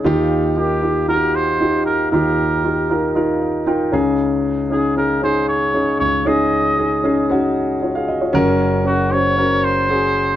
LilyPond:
<<
  \new Staff \with { instrumentName = "Trumpet" } { \time 4/4 \key ees \dorian \tempo 4 = 116 r4 g'4 bes'8 c''4 bes'8 | bes'2 r2 | r4 aes'8 bes'8 c''8 des''4 des''8 | ees''2 r2 |
r4 ges'8 des''4 c''4. | }
  \new Staff \with { instrumentName = "Grand piano" } { \time 4/4 \key ees \dorian << { r1 | r2 r8 ees''8 g''8 bes''8 | r1 | r2. <f' des''>16 <aes' f''>16 <ges' ees''>16 <f' des''>16~ |
<f' des''>16 r2. r8. | } \\ { <ees' f' g'>4 <ees' f' bes'>8 <ees' f' g'>8 <ees' f' ges' g'>4 <ees' f' g'>4 | <ees' f' g'>4 <ees' f' g'>8 <ees' f' bes'>8 <ees' f' bes'>4 <ees' f' bes'>8 <des' ees' aes'>8~ | <des' ees' aes'>4 <des' ees' aes'>8 <des' ees' aes'>8 <des' ees' aes'>4 <des' ees' aes'>4 | <des' ees' aes'>4 <des' ees' aes'>8 <des' ees' aes'>8 <des' ees' ges'>4 r4 |
<des' ges' bes'>4 <des' ges' bes'>8 <des' ges' c''>8 <des' ges' bes'>4 <des' ges' aes'>4 | } >> }
  \new Staff \with { instrumentName = "Grand piano" } { \clef bass \time 4/4 \key ees \dorian <ees, ees>1 | <ees, ees>2.~ <ees, ees>8 <des, des>8~ | <des, des>2.~ <des, des>8 <des, des>8~ | <des, des>2.~ <des, des>8 r8 |
<ges,, ges,>1 | }
>>